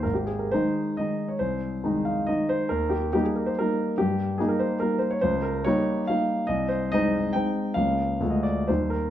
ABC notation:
X:1
M:3/4
L:1/16
Q:1/4=140
K:Ab
V:1 name="Grand piano"
B G A B c4 e3 d | c6 f2 e2 c2 | B2 G2 G A B c B4 | G4 A B c2 B2 c d |
c2 B2 d4 f4 | e2 c2 e4 g4 | f4- f e =d2 c2 B2 |]
V:2 name="Grand piano" clef=bass
A,,,4 [E,A,E]4 [E,A,E]4 | C,,4 [E,A,E]4 [E,A,E]4 | E,,4 [G,B,E]4 [G,B,E]4 | G,,4 [G,B,E]4 [G,B,E]4 |
D,,4 [G,B,E]4 [G,B,E]4 | C,,4 [A,CE]4 [A,CE]4 | [D,,A,B,D]4 [=D,,A,B,F]4 [E,,G,B,E]4 |]